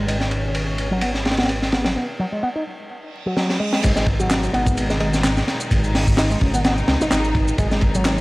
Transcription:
Already playing: G#1 B2 D#3 G#3
0.08 G#3 C#4, ride
0.20 snare
0.31 ride
0.55 ride
0.78 ride
0.91 F#3
1.01 B3, ride
1.15 snare
1.25 snare, ride
1.31 snare, ride
1.37 B3, snare, ride
1.43 snare, ride
1.49 ride
1.62 snare
1.72 B3, snare, ride
1.84 F#3, snare, ride
1.96 B3
2.19 F#3
2.32 G#3
2.43 B3
2.55 D#4
2.90 reverse cymbal
3.26 F#3
3.36 F#3, snare
3.50 snare
3.60 G#3
3.73 snare
3.83 G#1 B2 D#3 G#3 D#4, kick, crash, ride, impact, shaker
3.96 G#3, snare, shaker
4.06 kick, ride
4.19 F#3, shaker
4.31 snare, clap, ride, shaker
4.44 shaker
4.53 G#1 B3, ride
4.67 kick, shaker
4.77 ride, shaker
4.90 G#3, snare, shaker
5.00 G#3, ride
5.14 snare, shaker
5.24 snare, clap, ride, shaker
5.37 snare, shaker
5.48 snare, ride
5.60 shaker
5.71 G#1, kick, ride, shaker
5.84 shaker
5.95 snare, open hi-hat
6.07 kick, shaker
6.17 D#4, snare, clap, ride, shaker
6.30 G#3, ride, shaker
6.41 G#1 C#4, kick, ride
6.54 B3, ride, shaker
6.64 B3, snare, ride, shaker
6.78 shaker
6.88 C#2, snare, ride
7.00 G#1 D#4, snare, shaker
7.11 G#1 D#4, snare, clap, ride, shaker
7.24 shaker
7.35 kick, ride
7.48 shaker
7.58 G#1 G#3, kick, ride, shaker
7.71 G#3, snare, shaker
7.81 kick, ride
7.95 F#3, shaker
8.05 snare, clap, ride, shaker

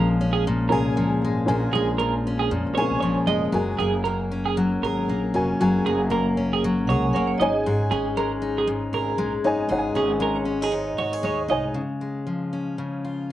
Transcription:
Already playing: A#1 A#2 F3 G#3 C#4 G#4 A#4 G#5
0.21 C#4
0.33 G#4
0.47 A#2
0.69 C2 C#4 G#4 A#4 G#5
0.96 C#2 F3
1.22 G#1 G#3
1.46 A#1 A#2 C#4 G#4 A#4 G#5
1.73 A#1 G#3 G#4
1.98 F3 A#4
2.27 C#4
2.39 G#4
2.51 F2 A#2
2.67 A#1
2.75 C4 G#4 A#4 C#5 G#5
2.81 C#4
2.91 C2
3.01 A#1 F3 C#5
3.27 F1 G#3 D#5
3.52 F#1 F#3 F#4 G#4 A#4 G#5
3.79 F#1 A#3 G#4
4.04 A#3 A#4
4.32 C#4
4.46 G#4
4.57 F#3
4.83 G#1 G#4 A#4
5.08 A#1 A#3
5.34 F1 C#4 F#4 A#4 G#5
5.60 F#1 F#3 F#4 G#4 A#4 G#5
5.86 F#1 A#3 G#4
6.10 A#3 A#4
6.37 C#4
6.53 G#4
6.64 F#3
6.87 C#2 G#4 A#4 C#5 F#5
7.02 G#5
7.13 F#1 A#3 A#4 C#5 F#5
7.27 C#5
7.38 G#1 G#2 D#4 C#5 D#5
7.42 G#5
7.53 G#4
7.66 G#2 G#4
7.91 G#1 C#4 G#4
8.17 G#3 A#4
8.42 D#4
8.58 G#4
8.67 G#2
8.93 G#1 G#4 A#4
9.18 A#1 G#3
9.44 F#1 D#4 C#5 G#5
9.69 G#1 G#2 D#4 G#4 C#5 F#5
9.78 G#5
9.95 G#1 C#4 G#4
10.20 G#3 A#4
10.35 C#5
10.45 C#4
10.61 D#4 G#4 D#5
10.71 G#2 C#5
10.87 D#5
10.98 G#1 F#4 C#5
11.13 G#4
11.23 D#2 G#3 C#5
11.48 C2 D#4 C#5 D#5 G#5
11.74 C#3
12.01 G#3
12.27 F3
12.53 C#4
12.78 C#3
13.05 F4

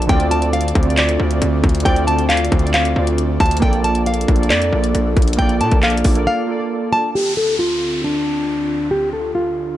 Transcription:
Already playing: A#3 F4 A4 D5
0.02 closed hi-hat
0.07 D2 D3 C4 F4 G5, kick, closed hi-hat
0.12 D5
0.20 closed hi-hat
0.31 A5, closed hi-hat
0.42 closed hi-hat
0.53 F5, closed hi-hat
0.61 closed hi-hat
0.68 closed hi-hat
0.75 D2, kick, closed hi-hat
0.83 D3 C4, closed hi-hat
0.87 F4 D5, closed hi-hat
0.97 D5, clap, closed hi-hat
1.09 closed hi-hat
1.17 D2 D3 C4 F4
1.22 D5
1.31 closed hi-hat
1.42 D2, closed hi-hat
1.64 D2, kick, closed hi-hat
1.69 closed hi-hat
1.75 closed hi-hat
1.80 D3, closed hi-hat
1.84 D2 C4 F4 D5 G5, kick, closed hi-hat
1.96 closed hi-hat
2.07 A5, closed hi-hat
2.19 closed hi-hat
2.29 F5, clap, closed hi-hat
2.37 closed hi-hat
2.45 closed hi-hat
2.52 D2, kick, closed hi-hat
2.59 D3 C4, closed hi-hat
2.64 F4 D5, closed hi-hat
2.74 F5, clap, closed hi-hat
2.85 closed hi-hat
2.93 D2 D3 C4 F4
2.98 D5
3.07 closed hi-hat
3.18 closed hi-hat
3.40 D2 A5, kick, closed hi-hat
3.46 closed hi-hat
3.51 closed hi-hat
3.57 A#3, closed hi-hat
3.62 A#1 A#3 D4 F4 A4 D5 G5, kick, closed hi-hat
3.73 closed hi-hat
3.84 A5, closed hi-hat
3.95 closed hi-hat
4.06 F5, closed hi-hat
4.14 closed hi-hat
4.21 closed hi-hat
4.28 A#1, kick, closed hi-hat
4.36 A#3 F4, closed hi-hat
4.40 A4 D5, closed hi-hat
4.50 F2 D5, clap, closed hi-hat
4.62 closed hi-hat
4.70 A#1 A#3 F4 A4
4.75 D5
4.84 closed hi-hat
4.95 A#1, closed hi-hat
5.17 A#1, kick, closed hi-hat
5.22 closed hi-hat
5.28 closed hi-hat
5.33 A#3, closed hi-hat
5.38 A#1 F4 A4 D5 G5, kick, closed hi-hat
5.49 closed hi-hat
5.61 A#2 A5, closed hi-hat
5.71 A#1, kick, closed hi-hat
5.83 F5, clap, closed hi-hat
5.90 closed hi-hat
5.97 closed hi-hat
6.04 A#1, kick, open hi-hat
6.14 A#3 F4 A4, closed hi-hat
6.19 D5
6.27 F5
6.46 A#3 F4 A4
6.52 D5
6.93 A5
7.15 D2 D3 C4 F4 G4, downlifter
7.37 A4
7.59 F4
8.04 D4
8.91 D4 G4
9.13 A4
9.35 F4

